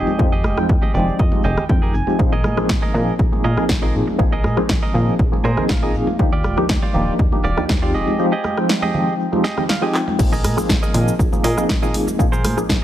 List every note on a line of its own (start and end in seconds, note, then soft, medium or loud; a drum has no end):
0.00 0.16 F3 medium
0.00 0.16 G#3 medium
0.00 0.16 C4 medium
0.00 0.16 D#4 medium
0.00 0.16 G4 medium
0.00 0.25 G4 medium
0.00 0.25 G#4 medium
0.00 0.25 D#5 medium
0.07 high conga medium
0.07 shaker soft
0.18 0.46 F2 medium
0.18 0.32 F3 medium
0.18 0.32 G#3 medium
0.18 0.32 C4 medium
0.18 0.32 D#4 medium
0.18 0.32 G4 medium
0.18 kick loud
0.32 0.57 G4 medium
0.32 0.58 G#4 medium
0.32 0.58 D#5 loud
0.32 shaker soft
0.44 0.57 F1 medium
0.44 cross-stick medium
0.44 high conga medium
0.44 shaker medium
0.57 0.67 F2 soft
0.57 0.91 F3 medium
0.57 0.91 G#3 medium
0.57 0.91 C4 medium
0.57 0.91 D#4 medium
0.57 0.92 G5 loud
0.57 cross-stick medium
0.57 shaker soft
0.69 0.78 F2 medium
0.69 kick loud
0.69 shaker medium
0.82 1.13 G4 medium
0.82 1.14 G#4 medium
0.82 0.94 D#5 medium
0.82 high conga medium
0.82 shaker soft
0.94 1.10 F1 loud
0.94 1.29 F3 medium
0.94 1.29 G#3 medium
0.94 1.29 C4 medium
0.94 1.29 D#4 medium
0.94 1.18 D5 medium
0.94 1.30 G5 medium
0.94 low conga medium
0.94 shaker medium
1.07 shaker soft
1.19 1.32 F2 medium
1.19 1.43 D#5 medium
1.19 kick loud
1.19 shaker soft
1.32 1.42 F1 soft
1.32 1.44 F3 medium
1.32 1.44 G#3 medium
1.32 1.44 C4 medium
1.32 1.44 D#4 medium
1.32 1.44 G4 medium
1.32 high conga loud
1.32 shaker soft
1.43 1.57 F1 loud
1.43 1.63 G4 medium
1.43 1.64 G#4 medium
1.43 1.64 D#5 loud
1.43 1.68 G5 medium
1.43 shaker medium
1.57 1.67 F2 soft
1.57 cross-stick medium
1.57 low conga medium
1.57 shaker soft
1.69 1.96 F2 medium
1.69 2.04 F3 medium
1.69 2.04 G#3 medium
1.69 2.04 C4 medium
1.69 2.04 D#4 medium
1.69 1.93 G5 medium
1.69 kick loud
1.69 high conga medium
1.69 shaker soft
1.82 1.94 G4 medium
1.82 1.94 G#4 medium
1.82 1.94 A#4 medium
1.82 shaker soft
1.94 2.03 F1 medium
1.94 2.18 G#5 medium
1.94 shaker medium
2.07 2.16 F3 medium
2.07 2.16 G#3 medium
2.07 2.16 C4 medium
2.07 2.16 D#4 medium
2.07 2.17 G4 medium
2.07 muted clean electric guitar stroke soft
2.07 high conga medium
2.07 shaker soft
2.19 2.46 A#1 loud
2.19 2.32 F3 medium
2.19 2.32 A#3 medium
2.19 2.32 C4 medium
2.19 2.32 D#4 medium
2.19 2.33 G#4 loud
2.19 kick loud
2.19 shaker soft
2.33 2.58 G#4 medium
2.33 2.58 A#4 medium
2.33 2.58 D#5 loud
2.33 shaker soft
2.44 2.57 A#2 medium
2.44 cross-stick medium
2.44 high conga medium
2.44 shaker medium
2.57 2.67 A#1 soft
2.57 2.91 F3 medium
2.57 2.91 A#3 medium
2.57 2.91 C4 medium
2.57 2.92 D#4 medium
2.57 2.92 G#4 loud
2.57 cross-stick medium
2.57 shaker soft
2.69 2.78 A#1 medium
2.69 kick loud
2.69 snare loud
2.69 shaker soft
2.82 3.13 G#4 medium
2.82 3.13 A#4 medium
2.82 3.14 D#5 medium
2.82 high conga medium
2.82 shaker soft
2.93 3.10 A#2 loud
2.93 3.29 F3 medium
2.93 3.29 A#3 medium
2.93 3.29 C4 medium
2.93 3.29 D#4 medium
2.93 3.29 G#4 medium
2.93 low conga medium
2.93 shaker medium
3.08 shaker soft
3.19 3.32 A#1 medium
3.19 kick loud
3.19 shaker soft
3.32 3.42 A#2 soft
3.32 3.44 F3 medium
3.32 3.44 A#3 medium
3.32 3.44 C4 medium
3.32 3.44 D#4 medium
3.32 3.44 G#4 medium
3.32 high conga medium
3.32 shaker soft
3.44 3.57 A#2 loud
3.44 3.63 G#4 medium
3.44 3.64 A#4 medium
3.44 3.64 D#5 loud
3.44 shaker medium
3.57 3.67 A#1 soft
3.57 3.69 F3 medium
3.57 3.69 A#3 medium
3.57 3.69 C4 medium
3.57 3.69 D#4 medium
3.57 3.69 G#4 medium
3.57 cross-stick medium
3.57 shaker soft
3.69 3.96 A#1 medium
3.69 kick loud
3.69 snare loud
3.69 high conga medium
3.69 shaker soft
3.82 4.16 F3 medium
3.82 4.16 A#3 medium
3.82 4.16 C4 medium
3.82 4.16 D#4 medium
3.82 4.17 G#4 medium
3.82 3.94 G#4 medium
3.82 3.94 A#4 medium
3.82 3.94 D#5 medium
3.82 shaker soft
3.94 4.03 A#2 medium
3.94 shaker medium
4.07 muted clean electric guitar stroke soft
4.07 high conga medium
4.07 shaker soft
4.19 4.46 A#1 medium
4.19 4.32 F3 medium
4.19 4.32 A#3 medium
4.19 4.32 C4 medium
4.19 4.32 D#4 medium
4.19 4.32 G#4 loud
4.19 kick loud
4.19 shaker soft
4.32 4.58 G#4 loud
4.32 4.58 A#4 medium
4.32 4.58 D#5 loud
4.32 shaker soft
4.44 4.57 A#2 medium
4.44 cross-stick medium
4.44 high conga medium
4.44 shaker medium
4.57 4.67 A#1 soft
4.57 4.91 F3 medium
4.57 4.91 A#3 medium
4.57 4.91 C4 medium
4.57 4.92 D#4 medium
4.57 4.92 G#4 medium
4.57 cross-stick medium
4.57 shaker soft
4.69 4.78 A#1 medium
4.69 kick loud
4.69 snare loud
4.82 5.14 G#4 medium
4.82 5.14 A#4 medium
4.82 5.14 D#5 medium
4.82 high conga medium
4.82 shaker soft
4.94 5.10 A#2 loud
4.94 5.29 F3 medium
4.94 5.29 A#3 medium
4.94 5.29 C4 medium
4.94 5.29 D#4 medium
4.94 5.30 G#4 medium
4.94 low conga medium
4.94 shaker medium
5.08 shaker soft
5.19 5.32 A#1 medium
5.19 kick loud
5.19 shaker soft
5.32 5.42 A#2 soft
5.32 5.44 F3 medium
5.32 5.44 A#3 medium
5.32 5.44 C4 medium
5.32 5.44 D#4 medium
5.32 5.44 G#4 medium
5.32 high conga medium
5.32 shaker soft
5.44 5.57 A#2 loud
5.44 5.63 G#4 medium
5.44 5.64 A#4 loud
5.44 5.64 C5 loud
5.44 5.68 G#5 medium
5.44 shaker medium
5.57 5.67 A#1 soft
5.57 5.69 F3 medium
5.57 5.69 A#3 medium
5.57 5.69 C4 medium
5.57 5.69 D#4 medium
5.57 5.69 G#4 medium
5.57 cross-stick medium
5.57 low conga medium
5.57 shaker soft
5.68 5.96 A#1 medium
5.68 6.16 F5 medium
5.68 kick loud
5.68 snare loud
5.68 high conga medium
5.68 shaker soft
5.82 6.16 F3 medium
5.82 6.16 A#3 medium
5.82 6.17 C4 medium
5.82 6.17 D#4 medium
5.82 6.17 G#4 medium
5.82 5.94 G#4 medium
5.82 5.94 A#4 medium
5.82 5.95 D#5 medium
5.82 shaker soft
5.94 6.03 A#2 medium
5.94 shaker medium
6.07 muted clean electric guitar stroke soft
6.07 high conga medium
6.07 shaker soft
6.19 6.46 D#2 medium
6.19 6.32 F3 medium
6.19 6.32 A#3 medium
6.19 6.32 D4 medium
6.19 6.33 D#4 medium
6.19 6.33 G4 loud
6.19 kick loud
6.19 shaker soft
6.32 6.58 F4 medium
6.32 6.58 G4 medium
6.32 6.58 D5 loud
6.32 shaker soft
6.44 6.57 D#1 medium
6.44 cross-stick medium
6.44 high conga medium
6.44 shaker medium
6.57 6.67 D#2 soft
6.57 6.91 F3 medium
6.57 6.91 A#3 medium
6.57 6.91 D4 medium
6.57 6.92 D#4 medium
6.57 6.92 G4 loud
6.57 cross-stick medium
6.57 shaker soft
6.69 6.78 D#2 loud
6.69 kick loud
6.69 snare loud
6.82 7.13 F4 medium
6.82 7.14 G4 medium
6.82 7.14 D5 loud
6.82 high conga medium
6.82 shaker soft
6.94 7.10 D#1 loud
6.94 7.29 F3 medium
6.94 7.29 A#3 medium
6.94 7.29 D4 medium
6.94 7.29 D#4 medium
6.94 7.30 G4 medium
6.94 low conga medium
6.94 shaker medium
7.07 shaker soft
7.18 7.32 D#2 medium
7.18 kick loud
7.18 shaker soft
7.32 7.42 D#1 soft
7.32 7.44 F3 medium
7.32 7.44 A#3 medium
7.32 7.44 D4 medium
7.32 7.44 D#4 medium
7.32 7.44 G4 medium
7.32 high conga medium
7.32 shaker soft
7.44 7.57 D#1 loud
7.44 7.63 F4 loud
7.44 7.63 G4 medium
7.44 7.64 D5 loud
7.44 shaker medium
7.57 7.67 D#2 soft
7.57 7.69 F3 medium
7.57 7.69 A#3 medium
7.57 7.69 D4 medium
7.57 7.69 D#4 medium
7.57 7.69 G4 medium
7.57 cross-stick medium
7.57 shaker soft
7.69 7.96 D#2 medium
7.69 kick loud
7.69 snare loud
7.69 high conga medium
7.69 shaker soft
7.82 8.16 F3 medium
7.82 8.16 G#3 medium
7.82 8.17 C4 medium
7.82 8.17 D#4 medium
7.82 7.94 F4 medium
7.82 8.17 G4 loud
7.82 7.93 G4 medium
7.82 7.94 D5 medium
7.82 shaker soft
7.94 8.03 F1 medium
7.94 8.25 G4 medium
7.94 8.25 G#4 medium
7.94 8.25 D#5 loud
7.94 shaker medium
8.07 high conga medium
8.07 shaker soft
8.19 8.32 F3 medium
8.19 8.32 G#3 medium
8.19 8.32 C4 medium
8.19 8.33 D#4 medium
8.19 8.33 G4 medium
8.19 shaker medium
8.32 8.57 G4 loud
8.32 8.58 G#4 medium
8.32 8.58 D#5 loud
8.32 shaker soft
8.44 cross-stick medium
8.44 high conga medium
8.44 shaker loud
8.57 8.91 F3 medium
8.57 8.92 G#3 medium
8.57 8.92 C4 medium
8.57 8.92 D#4 medium
8.57 8.92 G5 loud
8.57 cross-stick medium
8.57 shaker soft
8.69 snare loud
8.82 9.13 G4 medium
8.82 9.14 G#4 medium
8.82 9.14 D#5 medium
8.82 high conga medium
8.82 shaker soft
8.93 9.29 F3 medium
8.93 9.29 G#3 medium
8.93 9.29 C4 medium
8.93 9.30 D#4 medium
8.93 9.30 G5 medium
8.93 low conga medium
8.93 shaker medium
9.07 shaker soft
9.20 shaker medium
9.32 9.44 F3 medium
9.32 9.44 G#3 medium
9.32 9.44 C4 medium
9.32 9.44 D#4 medium
9.32 9.44 G4 medium
9.32 high conga medium
9.32 shaker soft
9.44 9.63 G4 loud
9.44 9.63 G#4 loud
9.44 9.63 D#5 loud
9.44 snare medium
9.44 shaker medium
9.57 9.69 F3 medium
9.57 9.69 G#3 medium
9.57 9.69 C4 medium
9.57 9.69 D#4 medium
9.57 9.69 G4 medium
9.57 cross-stick medium
9.57 low conga medium
9.57 shaker soft
9.69 9.82 F5 medium
9.69 snare loud
9.69 high conga medium
9.69 shaker medium
9.82 10.16 F3 medium
9.82 10.16 G#3 medium
9.82 10.16 C4 medium
9.82 10.16 D#4 medium
9.82 9.94 G4 medium
9.82 9.94 G#4 medium
9.82 9.94 D#5 medium
9.82 10.17 G5 loud
9.82 shaker soft
9.94 clap medium
9.94 shaker medium
10.07 muted clean electric guitar stroke soft
10.07 high conga medium
10.07 shaker soft
10.18 10.46 A#1 loud
10.18 10.32 F3 medium
10.18 10.32 A#3 medium
10.18 10.32 C4 medium
10.18 10.32 D#4 medium
10.18 10.32 G#4 loud
10.18 kick loud
10.18 crash medium
10.18 shaker medium
10.33 10.58 G#4 loud
10.33 10.58 A#4 medium
10.33 10.58 D#5 loud
10.33 shaker soft
10.44 10.57 A#2 medium
10.44 cross-stick medium
10.44 open hi-hat loud
10.44 high conga medium
10.44 shaker medium
10.57 10.67 A#1 soft
10.57 10.91 F3 medium
10.57 10.91 A#3 medium
10.57 10.91 C4 medium
10.57 10.91 D#4 medium
10.57 10.92 G#4 loud
10.57 cross-stick medium
10.57 shaker medium
10.69 10.78 A#1 loud
10.69 kick loud
10.69 snare loud
10.69 shaker medium
10.83 11.13 G#4 medium
10.83 11.14 A#4 medium
10.83 11.14 D#5 medium
10.83 high conga medium
10.83 shaker soft
10.93 11.10 A#2 loud
10.93 11.29 F3 medium
10.93 11.29 A#3 medium
10.93 11.29 C4 medium
10.93 11.29 D#4 medium
10.93 11.30 G#4 medium
10.93 open hi-hat loud
10.93 low conga medium
10.93 shaker medium
11.08 shaker medium
11.19 11.32 A#1 medium
11.19 kick loud
11.19 shaker medium
11.32 11.42 A#2 soft
11.32 11.44 F3 medium
11.32 11.44 A#3 medium
11.32 11.44 C4 medium
11.32 11.44 D#4 medium
11.32 11.44 G#4 medium
11.32 high conga loud
11.32 shaker soft
11.44 11.57 A#2 loud
11.44 11.63 G#4 loud
11.44 11.63 A#4 medium
11.44 11.64 D#5 loud
11.44 open hi-hat loud
11.44 shaker medium
11.57 11.67 A#1 soft
11.57 11.69 F3 medium
11.57 11.69 A#3 medium
11.57 11.69 C4 medium
11.57 11.69 D#4 medium
11.57 11.69 G#4 medium
11.57 cross-stick medium
11.57 shaker soft
11.57 shaker medium
11.69 11.96 A#1 medium
11.69 kick loud
11.69 snare loud
11.69 high conga medium
11.69 shaker medium
11.82 12.16 F3 medium
11.82 12.16 A#3 medium
11.82 12.16 C4 medium
11.82 12.17 D#4 medium
11.82 12.17 G#4 loud
11.82 11.94 G#4 medium
11.82 11.94 A#4 medium
11.82 11.95 D#5 medium
11.82 shaker soft
11.94 12.03 A#2 medium
11.94 open hi-hat loud
11.94 shaker medium
12.07 muted clean electric guitar stroke soft
12.07 high conga medium
12.07 shaker soft
12.07 shaker medium
12.19 12.46 A#1 loud
12.19 12.32 F3 medium
12.19 12.32 A#3 medium
12.19 12.32 C4 medium
12.19 12.33 D#4 medium
12.19 12.33 G#4 loud
12.19 kick loud
12.19 shaker soft
12.19 shaker medium
12.32 12.57 G#4 medium
12.32 12.58 A#4 medium
12.32 12.58 C5 loud
12.32 shaker soft
12.44 12.57 A#2 medium
12.44 cross-stick medium
12.44 open hi-hat loud
12.44 high conga loud
12.44 shaker medium
12.57 12.67 A#1 soft
12.57 12.84 F3 medium
12.57 12.84 A#3 medium
12.57 12.84 C4 medium
12.57 12.84 D#4 medium
12.57 12.84 G#4 loud
12.57 cross-stick medium
12.57 shaker medium
12.69 12.78 A#1 medium
12.69 kick loud
12.69 snare loud
12.69 shaker medium